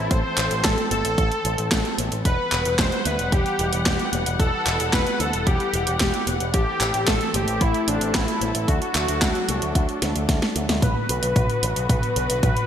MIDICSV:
0, 0, Header, 1, 5, 480
1, 0, Start_track
1, 0, Key_signature, 1, "minor"
1, 0, Tempo, 535714
1, 99, Time_signature, 4, 2, 24, 8
1, 11350, End_track
2, 0, Start_track
2, 0, Title_t, "Analog synth lead"
2, 0, Program_c, 0, 81
2, 0, Note_on_c, 0, 64, 96
2, 94, Note_on_c, 0, 72, 112
2, 108, Note_off_c, 0, 64, 0
2, 575, Note_on_c, 0, 69, 102
2, 588, Note_off_c, 0, 72, 0
2, 811, Note_off_c, 0, 69, 0
2, 816, Note_on_c, 0, 69, 93
2, 1741, Note_off_c, 0, 69, 0
2, 2018, Note_on_c, 0, 71, 100
2, 2465, Note_off_c, 0, 71, 0
2, 2498, Note_on_c, 0, 72, 120
2, 2739, Note_on_c, 0, 71, 102
2, 2752, Note_off_c, 0, 72, 0
2, 2973, Note_off_c, 0, 71, 0
2, 2978, Note_on_c, 0, 67, 99
2, 3425, Note_off_c, 0, 67, 0
2, 3460, Note_on_c, 0, 67, 79
2, 3682, Note_off_c, 0, 67, 0
2, 3938, Note_on_c, 0, 69, 104
2, 4416, Note_on_c, 0, 71, 115
2, 4430, Note_off_c, 0, 69, 0
2, 4657, Note_on_c, 0, 69, 100
2, 4671, Note_off_c, 0, 71, 0
2, 4899, Note_on_c, 0, 67, 102
2, 4913, Note_off_c, 0, 69, 0
2, 5375, Note_off_c, 0, 67, 0
2, 5381, Note_on_c, 0, 67, 81
2, 5603, Note_off_c, 0, 67, 0
2, 5861, Note_on_c, 0, 67, 109
2, 6340, Note_on_c, 0, 69, 112
2, 6354, Note_off_c, 0, 67, 0
2, 6582, Note_on_c, 0, 67, 100
2, 6596, Note_off_c, 0, 69, 0
2, 6821, Note_on_c, 0, 64, 104
2, 6835, Note_off_c, 0, 67, 0
2, 7061, Note_on_c, 0, 62, 93
2, 7075, Note_off_c, 0, 64, 0
2, 7301, Note_on_c, 0, 64, 95
2, 7314, Note_off_c, 0, 62, 0
2, 7776, Note_off_c, 0, 64, 0
2, 7781, Note_on_c, 0, 66, 103
2, 9184, Note_off_c, 0, 66, 0
2, 9702, Note_on_c, 0, 71, 119
2, 10625, Note_off_c, 0, 71, 0
2, 10660, Note_on_c, 0, 71, 113
2, 11350, Note_off_c, 0, 71, 0
2, 11350, End_track
3, 0, Start_track
3, 0, Title_t, "String section"
3, 0, Program_c, 1, 48
3, 0, Note_on_c, 1, 52, 77
3, 0, Note_on_c, 1, 57, 70
3, 0, Note_on_c, 1, 60, 73
3, 0, Note_on_c, 1, 69, 83
3, 1980, Note_off_c, 1, 69, 0
3, 1981, Note_off_c, 1, 60, 0
3, 1983, Note_off_c, 1, 52, 0
3, 1983, Note_off_c, 1, 57, 0
3, 2016, Note_on_c, 1, 52, 77
3, 2016, Note_on_c, 1, 59, 70
3, 2016, Note_on_c, 1, 78, 85
3, 2017, Note_on_c, 1, 55, 69
3, 5821, Note_off_c, 1, 59, 0
3, 5821, Note_off_c, 1, 78, 0
3, 5822, Note_off_c, 1, 55, 0
3, 5857, Note_on_c, 1, 69, 85
3, 5858, Note_on_c, 1, 57, 74
3, 5858, Note_on_c, 1, 60, 72
3, 7741, Note_off_c, 1, 52, 0
3, 7759, Note_off_c, 1, 57, 0
3, 7759, Note_off_c, 1, 60, 0
3, 7779, Note_on_c, 1, 54, 74
3, 7779, Note_on_c, 1, 62, 73
3, 7780, Note_on_c, 1, 57, 70
3, 9662, Note_off_c, 1, 69, 0
3, 9680, Note_off_c, 1, 54, 0
3, 9680, Note_off_c, 1, 57, 0
3, 9680, Note_off_c, 1, 62, 0
3, 9698, Note_on_c, 1, 50, 76
3, 9698, Note_on_c, 1, 59, 72
3, 9698, Note_on_c, 1, 66, 86
3, 9699, Note_on_c, 1, 54, 69
3, 11350, Note_off_c, 1, 50, 0
3, 11350, Note_off_c, 1, 54, 0
3, 11350, Note_off_c, 1, 59, 0
3, 11350, Note_off_c, 1, 66, 0
3, 11350, End_track
4, 0, Start_track
4, 0, Title_t, "Picked electric bass"
4, 0, Program_c, 2, 34
4, 97, Note_on_c, 2, 33, 94
4, 191, Note_off_c, 2, 33, 0
4, 336, Note_on_c, 2, 33, 95
4, 430, Note_off_c, 2, 33, 0
4, 456, Note_on_c, 2, 33, 81
4, 550, Note_off_c, 2, 33, 0
4, 577, Note_on_c, 2, 33, 95
4, 671, Note_off_c, 2, 33, 0
4, 816, Note_on_c, 2, 31, 90
4, 910, Note_off_c, 2, 31, 0
4, 938, Note_on_c, 2, 33, 76
4, 1031, Note_off_c, 2, 33, 0
4, 1057, Note_on_c, 2, 33, 94
4, 1151, Note_off_c, 2, 33, 0
4, 1298, Note_on_c, 2, 33, 87
4, 1391, Note_off_c, 2, 33, 0
4, 1419, Note_on_c, 2, 33, 75
4, 1512, Note_off_c, 2, 33, 0
4, 1537, Note_on_c, 2, 33, 99
4, 1631, Note_off_c, 2, 33, 0
4, 1777, Note_on_c, 2, 33, 83
4, 1871, Note_off_c, 2, 33, 0
4, 1898, Note_on_c, 2, 33, 78
4, 1991, Note_off_c, 2, 33, 0
4, 2017, Note_on_c, 2, 28, 96
4, 2111, Note_off_c, 2, 28, 0
4, 2259, Note_on_c, 2, 28, 89
4, 2351, Note_off_c, 2, 28, 0
4, 2378, Note_on_c, 2, 28, 77
4, 2471, Note_off_c, 2, 28, 0
4, 2497, Note_on_c, 2, 28, 101
4, 2591, Note_off_c, 2, 28, 0
4, 2738, Note_on_c, 2, 38, 93
4, 2831, Note_off_c, 2, 38, 0
4, 2859, Note_on_c, 2, 28, 75
4, 2951, Note_off_c, 2, 28, 0
4, 2978, Note_on_c, 2, 28, 97
4, 3071, Note_off_c, 2, 28, 0
4, 3217, Note_on_c, 2, 28, 87
4, 3311, Note_off_c, 2, 28, 0
4, 3339, Note_on_c, 2, 28, 79
4, 3431, Note_off_c, 2, 28, 0
4, 3458, Note_on_c, 2, 28, 93
4, 3551, Note_off_c, 2, 28, 0
4, 3698, Note_on_c, 2, 28, 89
4, 3791, Note_off_c, 2, 28, 0
4, 3819, Note_on_c, 2, 28, 85
4, 3912, Note_off_c, 2, 28, 0
4, 3939, Note_on_c, 2, 28, 93
4, 4031, Note_off_c, 2, 28, 0
4, 4178, Note_on_c, 2, 28, 90
4, 4271, Note_off_c, 2, 28, 0
4, 4298, Note_on_c, 2, 28, 80
4, 4391, Note_off_c, 2, 28, 0
4, 4418, Note_on_c, 2, 28, 95
4, 4511, Note_off_c, 2, 28, 0
4, 4658, Note_on_c, 2, 38, 97
4, 4751, Note_off_c, 2, 38, 0
4, 4779, Note_on_c, 2, 28, 75
4, 4871, Note_off_c, 2, 28, 0
4, 4899, Note_on_c, 2, 28, 97
4, 4991, Note_off_c, 2, 28, 0
4, 5138, Note_on_c, 2, 28, 90
4, 5231, Note_off_c, 2, 28, 0
4, 5259, Note_on_c, 2, 28, 77
4, 5351, Note_off_c, 2, 28, 0
4, 5380, Note_on_c, 2, 28, 98
4, 5472, Note_off_c, 2, 28, 0
4, 5617, Note_on_c, 2, 28, 87
4, 5710, Note_off_c, 2, 28, 0
4, 5738, Note_on_c, 2, 28, 83
4, 5831, Note_off_c, 2, 28, 0
4, 5859, Note_on_c, 2, 33, 93
4, 5952, Note_off_c, 2, 33, 0
4, 6097, Note_on_c, 2, 33, 95
4, 6191, Note_off_c, 2, 33, 0
4, 6217, Note_on_c, 2, 33, 79
4, 6311, Note_off_c, 2, 33, 0
4, 6338, Note_on_c, 2, 33, 95
4, 6431, Note_off_c, 2, 33, 0
4, 6577, Note_on_c, 2, 31, 90
4, 6671, Note_off_c, 2, 31, 0
4, 6697, Note_on_c, 2, 33, 74
4, 6791, Note_off_c, 2, 33, 0
4, 6819, Note_on_c, 2, 33, 105
4, 6912, Note_off_c, 2, 33, 0
4, 7058, Note_on_c, 2, 33, 87
4, 7151, Note_off_c, 2, 33, 0
4, 7177, Note_on_c, 2, 33, 76
4, 7270, Note_off_c, 2, 33, 0
4, 7299, Note_on_c, 2, 33, 94
4, 7391, Note_off_c, 2, 33, 0
4, 7537, Note_on_c, 2, 33, 86
4, 7631, Note_off_c, 2, 33, 0
4, 7658, Note_on_c, 2, 33, 79
4, 7751, Note_off_c, 2, 33, 0
4, 7778, Note_on_c, 2, 38, 100
4, 7871, Note_off_c, 2, 38, 0
4, 8017, Note_on_c, 2, 38, 94
4, 8111, Note_off_c, 2, 38, 0
4, 8137, Note_on_c, 2, 38, 78
4, 8231, Note_off_c, 2, 38, 0
4, 8259, Note_on_c, 2, 38, 101
4, 8351, Note_off_c, 2, 38, 0
4, 8500, Note_on_c, 2, 36, 90
4, 8592, Note_off_c, 2, 36, 0
4, 8619, Note_on_c, 2, 38, 77
4, 8712, Note_off_c, 2, 38, 0
4, 8738, Note_on_c, 2, 38, 102
4, 8831, Note_off_c, 2, 38, 0
4, 8980, Note_on_c, 2, 38, 86
4, 9072, Note_off_c, 2, 38, 0
4, 9100, Note_on_c, 2, 38, 77
4, 9192, Note_off_c, 2, 38, 0
4, 9218, Note_on_c, 2, 38, 98
4, 9311, Note_off_c, 2, 38, 0
4, 9460, Note_on_c, 2, 38, 88
4, 9552, Note_off_c, 2, 38, 0
4, 9580, Note_on_c, 2, 38, 84
4, 9672, Note_off_c, 2, 38, 0
4, 9698, Note_on_c, 2, 35, 97
4, 9791, Note_off_c, 2, 35, 0
4, 9937, Note_on_c, 2, 35, 90
4, 10031, Note_off_c, 2, 35, 0
4, 10057, Note_on_c, 2, 35, 81
4, 10151, Note_off_c, 2, 35, 0
4, 10178, Note_on_c, 2, 35, 97
4, 10271, Note_off_c, 2, 35, 0
4, 10418, Note_on_c, 2, 33, 88
4, 10511, Note_off_c, 2, 33, 0
4, 10537, Note_on_c, 2, 35, 74
4, 10630, Note_off_c, 2, 35, 0
4, 10657, Note_on_c, 2, 35, 97
4, 10751, Note_off_c, 2, 35, 0
4, 10897, Note_on_c, 2, 35, 86
4, 10990, Note_off_c, 2, 35, 0
4, 11017, Note_on_c, 2, 35, 77
4, 11111, Note_off_c, 2, 35, 0
4, 11137, Note_on_c, 2, 35, 97
4, 11231, Note_off_c, 2, 35, 0
4, 11350, End_track
5, 0, Start_track
5, 0, Title_t, "Drums"
5, 96, Note_on_c, 9, 42, 76
5, 97, Note_on_c, 9, 36, 116
5, 186, Note_off_c, 9, 42, 0
5, 187, Note_off_c, 9, 36, 0
5, 336, Note_on_c, 9, 39, 75
5, 336, Note_on_c, 9, 42, 75
5, 426, Note_off_c, 9, 39, 0
5, 426, Note_off_c, 9, 42, 0
5, 456, Note_on_c, 9, 42, 49
5, 546, Note_off_c, 9, 42, 0
5, 576, Note_on_c, 9, 38, 120
5, 576, Note_on_c, 9, 39, 82
5, 576, Note_on_c, 9, 42, 73
5, 577, Note_on_c, 9, 36, 123
5, 666, Note_off_c, 9, 38, 0
5, 666, Note_off_c, 9, 39, 0
5, 666, Note_off_c, 9, 42, 0
5, 667, Note_off_c, 9, 36, 0
5, 697, Note_on_c, 9, 42, 35
5, 786, Note_off_c, 9, 42, 0
5, 817, Note_on_c, 9, 42, 74
5, 907, Note_off_c, 9, 42, 0
5, 939, Note_on_c, 9, 42, 49
5, 1028, Note_off_c, 9, 42, 0
5, 1057, Note_on_c, 9, 36, 119
5, 1058, Note_on_c, 9, 42, 70
5, 1147, Note_off_c, 9, 36, 0
5, 1148, Note_off_c, 9, 42, 0
5, 1179, Note_on_c, 9, 42, 34
5, 1268, Note_off_c, 9, 42, 0
5, 1298, Note_on_c, 9, 42, 76
5, 1388, Note_off_c, 9, 42, 0
5, 1418, Note_on_c, 9, 42, 49
5, 1508, Note_off_c, 9, 42, 0
5, 1537, Note_on_c, 9, 36, 123
5, 1538, Note_on_c, 9, 38, 122
5, 1538, Note_on_c, 9, 39, 85
5, 1538, Note_on_c, 9, 42, 72
5, 1627, Note_off_c, 9, 36, 0
5, 1627, Note_off_c, 9, 38, 0
5, 1627, Note_off_c, 9, 39, 0
5, 1627, Note_off_c, 9, 42, 0
5, 1658, Note_on_c, 9, 42, 35
5, 1747, Note_off_c, 9, 42, 0
5, 1778, Note_on_c, 9, 42, 74
5, 1868, Note_off_c, 9, 42, 0
5, 1898, Note_on_c, 9, 42, 51
5, 1988, Note_off_c, 9, 42, 0
5, 2017, Note_on_c, 9, 36, 110
5, 2018, Note_on_c, 9, 42, 72
5, 2107, Note_off_c, 9, 36, 0
5, 2108, Note_off_c, 9, 42, 0
5, 2258, Note_on_c, 9, 39, 70
5, 2258, Note_on_c, 9, 42, 74
5, 2347, Note_off_c, 9, 39, 0
5, 2347, Note_off_c, 9, 42, 0
5, 2378, Note_on_c, 9, 42, 49
5, 2468, Note_off_c, 9, 42, 0
5, 2497, Note_on_c, 9, 36, 114
5, 2498, Note_on_c, 9, 38, 113
5, 2498, Note_on_c, 9, 39, 80
5, 2498, Note_on_c, 9, 42, 70
5, 2587, Note_off_c, 9, 36, 0
5, 2588, Note_off_c, 9, 38, 0
5, 2588, Note_off_c, 9, 39, 0
5, 2588, Note_off_c, 9, 42, 0
5, 2618, Note_on_c, 9, 42, 35
5, 2707, Note_off_c, 9, 42, 0
5, 2737, Note_on_c, 9, 42, 73
5, 2827, Note_off_c, 9, 42, 0
5, 2858, Note_on_c, 9, 42, 47
5, 2948, Note_off_c, 9, 42, 0
5, 2978, Note_on_c, 9, 36, 119
5, 2978, Note_on_c, 9, 42, 68
5, 3067, Note_off_c, 9, 36, 0
5, 3068, Note_off_c, 9, 42, 0
5, 3098, Note_on_c, 9, 42, 34
5, 3188, Note_off_c, 9, 42, 0
5, 3218, Note_on_c, 9, 42, 74
5, 3307, Note_off_c, 9, 42, 0
5, 3338, Note_on_c, 9, 42, 50
5, 3428, Note_off_c, 9, 42, 0
5, 3458, Note_on_c, 9, 36, 119
5, 3459, Note_on_c, 9, 38, 117
5, 3459, Note_on_c, 9, 39, 82
5, 3459, Note_on_c, 9, 42, 74
5, 3547, Note_off_c, 9, 36, 0
5, 3548, Note_off_c, 9, 38, 0
5, 3548, Note_off_c, 9, 39, 0
5, 3548, Note_off_c, 9, 42, 0
5, 3579, Note_on_c, 9, 42, 36
5, 3668, Note_off_c, 9, 42, 0
5, 3700, Note_on_c, 9, 42, 77
5, 3789, Note_off_c, 9, 42, 0
5, 3820, Note_on_c, 9, 42, 53
5, 3910, Note_off_c, 9, 42, 0
5, 3938, Note_on_c, 9, 36, 110
5, 3940, Note_on_c, 9, 42, 76
5, 4028, Note_off_c, 9, 36, 0
5, 4029, Note_off_c, 9, 42, 0
5, 4180, Note_on_c, 9, 39, 67
5, 4180, Note_on_c, 9, 42, 80
5, 4269, Note_off_c, 9, 39, 0
5, 4269, Note_off_c, 9, 42, 0
5, 4300, Note_on_c, 9, 42, 52
5, 4389, Note_off_c, 9, 42, 0
5, 4419, Note_on_c, 9, 36, 112
5, 4420, Note_on_c, 9, 38, 106
5, 4420, Note_on_c, 9, 39, 80
5, 4420, Note_on_c, 9, 42, 74
5, 4508, Note_off_c, 9, 36, 0
5, 4509, Note_off_c, 9, 38, 0
5, 4509, Note_off_c, 9, 39, 0
5, 4509, Note_off_c, 9, 42, 0
5, 4539, Note_on_c, 9, 42, 36
5, 4628, Note_off_c, 9, 42, 0
5, 4659, Note_on_c, 9, 42, 75
5, 4749, Note_off_c, 9, 42, 0
5, 4779, Note_on_c, 9, 42, 52
5, 4869, Note_off_c, 9, 42, 0
5, 4899, Note_on_c, 9, 36, 114
5, 4899, Note_on_c, 9, 42, 74
5, 4988, Note_off_c, 9, 36, 0
5, 4988, Note_off_c, 9, 42, 0
5, 5019, Note_on_c, 9, 42, 35
5, 5109, Note_off_c, 9, 42, 0
5, 5139, Note_on_c, 9, 42, 76
5, 5228, Note_off_c, 9, 42, 0
5, 5259, Note_on_c, 9, 42, 53
5, 5348, Note_off_c, 9, 42, 0
5, 5378, Note_on_c, 9, 38, 116
5, 5378, Note_on_c, 9, 39, 83
5, 5378, Note_on_c, 9, 42, 76
5, 5379, Note_on_c, 9, 36, 114
5, 5468, Note_off_c, 9, 38, 0
5, 5468, Note_off_c, 9, 39, 0
5, 5468, Note_off_c, 9, 42, 0
5, 5469, Note_off_c, 9, 36, 0
5, 5499, Note_on_c, 9, 42, 36
5, 5588, Note_off_c, 9, 42, 0
5, 5619, Note_on_c, 9, 42, 82
5, 5708, Note_off_c, 9, 42, 0
5, 5738, Note_on_c, 9, 42, 52
5, 5828, Note_off_c, 9, 42, 0
5, 5858, Note_on_c, 9, 42, 78
5, 5859, Note_on_c, 9, 36, 109
5, 5947, Note_off_c, 9, 42, 0
5, 5949, Note_off_c, 9, 36, 0
5, 6099, Note_on_c, 9, 39, 73
5, 6099, Note_on_c, 9, 42, 81
5, 6188, Note_off_c, 9, 39, 0
5, 6188, Note_off_c, 9, 42, 0
5, 6218, Note_on_c, 9, 42, 56
5, 6308, Note_off_c, 9, 42, 0
5, 6338, Note_on_c, 9, 38, 108
5, 6338, Note_on_c, 9, 39, 80
5, 6338, Note_on_c, 9, 42, 77
5, 6339, Note_on_c, 9, 36, 110
5, 6428, Note_off_c, 9, 36, 0
5, 6428, Note_off_c, 9, 38, 0
5, 6428, Note_off_c, 9, 39, 0
5, 6428, Note_off_c, 9, 42, 0
5, 6458, Note_on_c, 9, 42, 39
5, 6548, Note_off_c, 9, 42, 0
5, 6579, Note_on_c, 9, 42, 77
5, 6668, Note_off_c, 9, 42, 0
5, 6699, Note_on_c, 9, 42, 52
5, 6789, Note_off_c, 9, 42, 0
5, 6818, Note_on_c, 9, 42, 73
5, 6819, Note_on_c, 9, 36, 112
5, 6908, Note_off_c, 9, 36, 0
5, 6908, Note_off_c, 9, 42, 0
5, 6939, Note_on_c, 9, 42, 38
5, 7028, Note_off_c, 9, 42, 0
5, 7059, Note_on_c, 9, 42, 80
5, 7148, Note_off_c, 9, 42, 0
5, 7179, Note_on_c, 9, 42, 56
5, 7268, Note_off_c, 9, 42, 0
5, 7299, Note_on_c, 9, 36, 110
5, 7299, Note_on_c, 9, 38, 114
5, 7299, Note_on_c, 9, 39, 86
5, 7299, Note_on_c, 9, 42, 79
5, 7388, Note_off_c, 9, 36, 0
5, 7389, Note_off_c, 9, 38, 0
5, 7389, Note_off_c, 9, 39, 0
5, 7389, Note_off_c, 9, 42, 0
5, 7420, Note_on_c, 9, 42, 39
5, 7509, Note_off_c, 9, 42, 0
5, 7540, Note_on_c, 9, 42, 78
5, 7629, Note_off_c, 9, 42, 0
5, 7659, Note_on_c, 9, 42, 57
5, 7749, Note_off_c, 9, 42, 0
5, 7779, Note_on_c, 9, 36, 105
5, 7780, Note_on_c, 9, 42, 81
5, 7868, Note_off_c, 9, 36, 0
5, 7869, Note_off_c, 9, 42, 0
5, 7900, Note_on_c, 9, 42, 36
5, 7989, Note_off_c, 9, 42, 0
5, 8019, Note_on_c, 9, 39, 73
5, 8019, Note_on_c, 9, 42, 82
5, 8109, Note_off_c, 9, 39, 0
5, 8109, Note_off_c, 9, 42, 0
5, 8140, Note_on_c, 9, 42, 57
5, 8229, Note_off_c, 9, 42, 0
5, 8258, Note_on_c, 9, 36, 115
5, 8259, Note_on_c, 9, 38, 103
5, 8259, Note_on_c, 9, 39, 86
5, 8259, Note_on_c, 9, 42, 81
5, 8348, Note_off_c, 9, 36, 0
5, 8349, Note_off_c, 9, 38, 0
5, 8349, Note_off_c, 9, 39, 0
5, 8349, Note_off_c, 9, 42, 0
5, 8380, Note_on_c, 9, 42, 38
5, 8469, Note_off_c, 9, 42, 0
5, 8499, Note_on_c, 9, 42, 82
5, 8589, Note_off_c, 9, 42, 0
5, 8620, Note_on_c, 9, 42, 55
5, 8709, Note_off_c, 9, 42, 0
5, 8738, Note_on_c, 9, 36, 114
5, 8739, Note_on_c, 9, 42, 76
5, 8828, Note_off_c, 9, 36, 0
5, 8829, Note_off_c, 9, 42, 0
5, 8859, Note_on_c, 9, 42, 37
5, 8949, Note_off_c, 9, 42, 0
5, 8979, Note_on_c, 9, 38, 59
5, 8979, Note_on_c, 9, 42, 80
5, 9068, Note_off_c, 9, 38, 0
5, 9068, Note_off_c, 9, 42, 0
5, 9099, Note_on_c, 9, 42, 54
5, 9189, Note_off_c, 9, 42, 0
5, 9218, Note_on_c, 9, 36, 118
5, 9218, Note_on_c, 9, 38, 73
5, 9218, Note_on_c, 9, 42, 82
5, 9307, Note_off_c, 9, 36, 0
5, 9308, Note_off_c, 9, 38, 0
5, 9308, Note_off_c, 9, 42, 0
5, 9339, Note_on_c, 9, 38, 73
5, 9339, Note_on_c, 9, 42, 40
5, 9428, Note_off_c, 9, 38, 0
5, 9428, Note_off_c, 9, 42, 0
5, 9459, Note_on_c, 9, 42, 82
5, 9548, Note_off_c, 9, 42, 0
5, 9579, Note_on_c, 9, 38, 89
5, 9579, Note_on_c, 9, 42, 55
5, 9669, Note_off_c, 9, 38, 0
5, 9669, Note_off_c, 9, 42, 0
5, 9698, Note_on_c, 9, 36, 108
5, 9700, Note_on_c, 9, 42, 80
5, 9700, Note_on_c, 9, 47, 47
5, 9788, Note_off_c, 9, 36, 0
5, 9789, Note_off_c, 9, 42, 0
5, 9789, Note_off_c, 9, 47, 0
5, 9940, Note_on_c, 9, 42, 88
5, 10029, Note_off_c, 9, 42, 0
5, 10059, Note_on_c, 9, 42, 55
5, 10149, Note_off_c, 9, 42, 0
5, 10178, Note_on_c, 9, 36, 113
5, 10180, Note_on_c, 9, 42, 80
5, 10180, Note_on_c, 9, 47, 50
5, 10267, Note_off_c, 9, 36, 0
5, 10270, Note_off_c, 9, 42, 0
5, 10270, Note_off_c, 9, 47, 0
5, 10300, Note_on_c, 9, 42, 37
5, 10390, Note_off_c, 9, 42, 0
5, 10420, Note_on_c, 9, 42, 80
5, 10510, Note_off_c, 9, 42, 0
5, 10540, Note_on_c, 9, 42, 55
5, 10629, Note_off_c, 9, 42, 0
5, 10658, Note_on_c, 9, 36, 117
5, 10659, Note_on_c, 9, 42, 77
5, 10659, Note_on_c, 9, 47, 49
5, 10747, Note_off_c, 9, 36, 0
5, 10749, Note_off_c, 9, 42, 0
5, 10749, Note_off_c, 9, 47, 0
5, 10779, Note_on_c, 9, 42, 37
5, 10869, Note_off_c, 9, 42, 0
5, 10898, Note_on_c, 9, 42, 80
5, 10987, Note_off_c, 9, 42, 0
5, 11018, Note_on_c, 9, 42, 57
5, 11108, Note_off_c, 9, 42, 0
5, 11137, Note_on_c, 9, 36, 118
5, 11138, Note_on_c, 9, 42, 82
5, 11138, Note_on_c, 9, 47, 55
5, 11227, Note_off_c, 9, 36, 0
5, 11228, Note_off_c, 9, 42, 0
5, 11228, Note_off_c, 9, 47, 0
5, 11259, Note_on_c, 9, 42, 39
5, 11348, Note_off_c, 9, 42, 0
5, 11350, End_track
0, 0, End_of_file